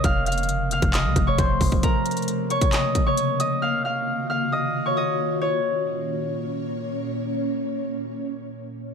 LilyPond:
<<
  \new Staff \with { instrumentName = "Harp" } { \time 4/4 \key bes \minor \tempo 4 = 134 <f'' f'''>8 <f'' f'''>8 r8 <f'' f'''>8 <ees'' ees'''>8. <des'' des'''>16 <c'' c'''>4 | <bes' bes''>4 r8 <des'' des'''>8 <ees'' ees'''>8. <des'' des'''>8. <ees'' ees'''>8 | <f'' f'''>8 <f'' f'''>8 r8 <f'' f'''>8 <ees'' ees'''>8. <des'' des'''>16 <ees'' ees'''>4 | des''2. r4 |
r1 | }
  \new Staff \with { instrumentName = "Ambient pad" } { \time 4/4 \key bes \minor << { <f a>1 | <des bes>1 | <ees f'>1 | <bes, bes des' des''>1~ |
<bes, bes des' des''>1 | } \\ { c1~ | c1 | ges'1 | r1 |
r1 | } >> }
  \new Staff \with { instrumentName = "808-style bass" } { \clef bass \time 4/4 \key bes \minor f,,4 ges,,8. f,,8 c,16 f,,8 f,,8 f,,8 | r1 | r1 | r1 |
r1 | }
  \new DrumStaff \with { instrumentName = "Drums" } \drummode { \time 4/4 <hh bd>8 hh32 hh32 hh32 hh32 hh8 hh16 <hh bd>16 <hc hh>8 <hh bd>8 <hh bd>8 <hho bd>16 bd16 | <hh bd>8 hh32 hh32 hh32 hh32 hh8 hh16 <hh bd>16 <hc hh>8 <hh bd>8 hh8 hh8 | r4 r4 r4 r4 | r4 r4 r4 r4 |
r4 r4 r4 r4 | }
>>